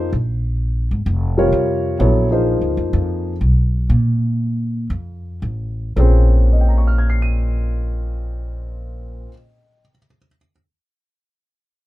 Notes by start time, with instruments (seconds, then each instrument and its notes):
Already playing: upright piano C5
0.13 upright bass A#1
0.91 upright bass G#1
1.06 upright bass F1
1.38 upright piano C3 G3 F4 A#4 C#5
1.52 upright bass F2
1.99 upright bass A#1, upright piano F#3 B3 E4 A4 C#5
2.31 upright piano F3 A#3 D#4 G#4 C5
2.61 upright bass C#2
2.77 upright bass F2
2.93 upright bass F2
3.41 upright bass B1
3.90 upright bass A#2
4.90 upright bass F2
5.42 upright bass A1
5.96 upright bass A#1, upright piano A#2 A#3 C4 C#4 G#4
6.53 upright piano D#5
6.61 upright piano G5
6.69 upright piano A#5
6.78 upright piano C#6
6.87 upright piano F6
6.98 upright piano G#6
7.10 upright piano C7
7.22 upright piano D#7